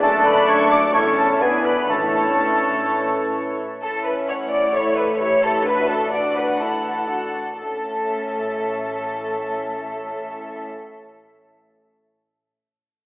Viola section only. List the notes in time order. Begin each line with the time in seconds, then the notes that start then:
0.03 A3 D4
0.94 A3 E4
1.42 E3 E4
1.89 E3 E4
3.83 C#4 E4
4.75 E4 A4
5.20 E4 G4
5.66 D4 F#4
6.12 D4 F#4
6.61 E4
7.09 D4 F#4
7.59 C#4 A4